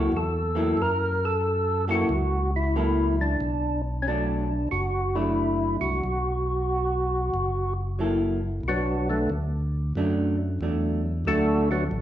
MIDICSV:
0, 0, Header, 1, 4, 480
1, 0, Start_track
1, 0, Key_signature, 2, "minor"
1, 0, Tempo, 655022
1, 574, Time_signature, 4, 2, 24, 8
1, 8805, End_track
2, 0, Start_track
2, 0, Title_t, "Tonewheel organ"
2, 0, Program_c, 0, 16
2, 0, Note_on_c, 0, 66, 83
2, 121, Note_on_c, 0, 69, 90
2, 124, Note_off_c, 0, 66, 0
2, 599, Note_on_c, 0, 70, 93
2, 602, Note_off_c, 0, 69, 0
2, 915, Note_off_c, 0, 70, 0
2, 918, Note_on_c, 0, 69, 111
2, 1357, Note_off_c, 0, 69, 0
2, 1398, Note_on_c, 0, 66, 77
2, 1837, Note_off_c, 0, 66, 0
2, 1876, Note_on_c, 0, 64, 88
2, 2316, Note_off_c, 0, 64, 0
2, 2354, Note_on_c, 0, 62, 86
2, 2795, Note_off_c, 0, 62, 0
2, 2948, Note_on_c, 0, 61, 61
2, 2980, Note_off_c, 0, 61, 0
2, 2991, Note_on_c, 0, 62, 72
2, 3435, Note_off_c, 0, 62, 0
2, 3454, Note_on_c, 0, 66, 97
2, 3776, Note_on_c, 0, 64, 95
2, 3784, Note_off_c, 0, 66, 0
2, 4227, Note_off_c, 0, 64, 0
2, 4258, Note_on_c, 0, 66, 98
2, 5667, Note_off_c, 0, 66, 0
2, 6359, Note_on_c, 0, 66, 69
2, 6362, Note_on_c, 0, 54, 51
2, 6365, Note_on_c, 0, 59, 51
2, 6368, Note_on_c, 0, 62, 53
2, 6655, Note_off_c, 0, 62, 0
2, 6657, Note_off_c, 0, 66, 0
2, 6659, Note_off_c, 0, 54, 0
2, 6660, Note_off_c, 0, 59, 0
2, 6664, Note_on_c, 0, 62, 69
2, 6665, Note_on_c, 0, 57, 53
2, 6670, Note_on_c, 0, 50, 53
2, 6672, Note_on_c, 0, 59, 53
2, 6816, Note_off_c, 0, 62, 0
2, 6817, Note_off_c, 0, 57, 0
2, 6820, Note_off_c, 0, 50, 0
2, 6820, Note_off_c, 0, 59, 0
2, 8261, Note_on_c, 0, 57, 64
2, 8262, Note_on_c, 0, 69, 77
2, 8265, Note_on_c, 0, 62, 75
2, 8265, Note_on_c, 0, 66, 64
2, 8567, Note_off_c, 0, 57, 0
2, 8567, Note_off_c, 0, 69, 0
2, 8569, Note_off_c, 0, 62, 0
2, 8569, Note_off_c, 0, 66, 0
2, 8580, Note_on_c, 0, 66, 97
2, 8585, Note_on_c, 0, 54, 75
2, 8586, Note_on_c, 0, 59, 75
2, 8587, Note_on_c, 0, 62, 72
2, 8675, Note_off_c, 0, 66, 0
2, 8678, Note_off_c, 0, 54, 0
2, 8679, Note_off_c, 0, 59, 0
2, 8679, Note_off_c, 0, 62, 0
2, 8805, End_track
3, 0, Start_track
3, 0, Title_t, "Hollow-body jazz guitar"
3, 0, Program_c, 1, 26
3, 0, Note_on_c, 1, 54, 62
3, 0, Note_on_c, 1, 58, 53
3, 0, Note_on_c, 1, 64, 63
3, 0, Note_on_c, 1, 69, 69
3, 77, Note_off_c, 1, 54, 0
3, 78, Note_off_c, 1, 58, 0
3, 78, Note_off_c, 1, 69, 0
3, 79, Note_off_c, 1, 64, 0
3, 404, Note_on_c, 1, 58, 61
3, 407, Note_on_c, 1, 54, 58
3, 412, Note_on_c, 1, 64, 70
3, 414, Note_on_c, 1, 69, 63
3, 554, Note_off_c, 1, 58, 0
3, 555, Note_off_c, 1, 54, 0
3, 558, Note_off_c, 1, 64, 0
3, 559, Note_off_c, 1, 69, 0
3, 1375, Note_on_c, 1, 54, 59
3, 1383, Note_on_c, 1, 58, 73
3, 1383, Note_on_c, 1, 69, 69
3, 1386, Note_on_c, 1, 64, 65
3, 1520, Note_off_c, 1, 54, 0
3, 1524, Note_off_c, 1, 58, 0
3, 1524, Note_off_c, 1, 69, 0
3, 1525, Note_off_c, 1, 64, 0
3, 2020, Note_on_c, 1, 54, 56
3, 2022, Note_on_c, 1, 58, 58
3, 2026, Note_on_c, 1, 64, 60
3, 2029, Note_on_c, 1, 69, 62
3, 2305, Note_off_c, 1, 54, 0
3, 2306, Note_off_c, 1, 58, 0
3, 2308, Note_off_c, 1, 64, 0
3, 2310, Note_off_c, 1, 69, 0
3, 2984, Note_on_c, 1, 54, 53
3, 2991, Note_on_c, 1, 57, 52
3, 2999, Note_on_c, 1, 62, 65
3, 3267, Note_off_c, 1, 54, 0
3, 3271, Note_off_c, 1, 57, 0
3, 3275, Note_off_c, 1, 62, 0
3, 3777, Note_on_c, 1, 57, 58
3, 3778, Note_on_c, 1, 54, 48
3, 3782, Note_on_c, 1, 62, 57
3, 4386, Note_off_c, 1, 54, 0
3, 4386, Note_off_c, 1, 57, 0
3, 4388, Note_off_c, 1, 62, 0
3, 5853, Note_on_c, 1, 54, 50
3, 5862, Note_on_c, 1, 58, 53
3, 5862, Note_on_c, 1, 64, 59
3, 5867, Note_on_c, 1, 69, 58
3, 6141, Note_off_c, 1, 54, 0
3, 6146, Note_off_c, 1, 58, 0
3, 6146, Note_off_c, 1, 64, 0
3, 6148, Note_off_c, 1, 69, 0
3, 7306, Note_on_c, 1, 54, 61
3, 7306, Note_on_c, 1, 57, 72
3, 7310, Note_on_c, 1, 62, 58
3, 7588, Note_off_c, 1, 54, 0
3, 7588, Note_off_c, 1, 57, 0
3, 7589, Note_off_c, 1, 62, 0
3, 7784, Note_on_c, 1, 54, 47
3, 7786, Note_on_c, 1, 57, 54
3, 7792, Note_on_c, 1, 62, 49
3, 8066, Note_off_c, 1, 54, 0
3, 8067, Note_off_c, 1, 57, 0
3, 8070, Note_off_c, 1, 62, 0
3, 8256, Note_on_c, 1, 54, 53
3, 8260, Note_on_c, 1, 57, 57
3, 8269, Note_on_c, 1, 62, 58
3, 8542, Note_off_c, 1, 54, 0
3, 8544, Note_off_c, 1, 57, 0
3, 8548, Note_off_c, 1, 62, 0
3, 8805, End_track
4, 0, Start_track
4, 0, Title_t, "Tonewheel organ"
4, 0, Program_c, 2, 16
4, 89, Note_on_c, 2, 40, 69
4, 543, Note_off_c, 2, 40, 0
4, 566, Note_on_c, 2, 42, 76
4, 1502, Note_off_c, 2, 42, 0
4, 1532, Note_on_c, 2, 37, 90
4, 2465, Note_off_c, 2, 37, 0
4, 2495, Note_on_c, 2, 35, 81
4, 3427, Note_off_c, 2, 35, 0
4, 3461, Note_on_c, 2, 30, 88
4, 4228, Note_off_c, 2, 30, 0
4, 4257, Note_on_c, 2, 36, 59
4, 4407, Note_off_c, 2, 36, 0
4, 4423, Note_on_c, 2, 35, 74
4, 5351, Note_off_c, 2, 35, 0
4, 5377, Note_on_c, 2, 30, 84
4, 6307, Note_off_c, 2, 30, 0
4, 6327, Note_on_c, 2, 35, 69
4, 6797, Note_off_c, 2, 35, 0
4, 6812, Note_on_c, 2, 38, 76
4, 7279, Note_off_c, 2, 38, 0
4, 7295, Note_on_c, 2, 42, 81
4, 7761, Note_off_c, 2, 42, 0
4, 7773, Note_on_c, 2, 40, 80
4, 8239, Note_off_c, 2, 40, 0
4, 8245, Note_on_c, 2, 38, 71
4, 8715, Note_off_c, 2, 38, 0
4, 8729, Note_on_c, 2, 33, 82
4, 8805, Note_off_c, 2, 33, 0
4, 8805, End_track
0, 0, End_of_file